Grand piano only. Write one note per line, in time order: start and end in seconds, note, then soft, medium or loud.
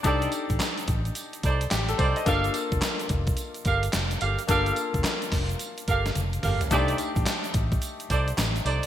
0.03 1.94 D4 medium
0.03 1.95 D#4 medium
0.03 1.68 G4 medium
0.03 1.68 A4 medium
1.71 1.88 G4 medium
1.89 1.98 A4 medium
1.98 2.15 C5 medium
2.17 2.43 D#5 medium
2.25 4.44 A#3 medium
2.25 4.45 D4 medium
2.25 4.45 F4 medium
2.25 4.45 A4 medium
4.47 6.66 A#3 medium
4.47 6.67 D4 medium
4.47 6.67 F4 medium
4.47 6.68 A4 medium
6.71 8.87 A3 medium
6.71 8.87 D4 medium
6.71 8.87 D#4 medium
6.71 8.87 G4 medium